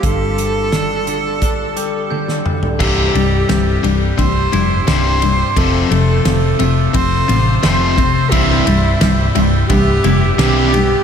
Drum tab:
CC |----------------|x---------------|----------------|----------------|
RD |----------------|--x-x-x-x-x-x-x-|x-x-x-x-x-x-x-x-|x-x-x-x-x-x-x-x-|
HH |x-x-x-x-x-x-----|----------------|----------------|----------------|
SD |----o--------o--|----o-------o---|----o-------o---|----o-------o---|
T1 |------------o---|----------------|----------------|----------------|
T2 |--------------o-|----------------|----------------|----------------|
FT |---------------o|----------------|----------------|----------------|
BD |o-------o-------|o-------o-------|o-------o-----o-|o-------o-------|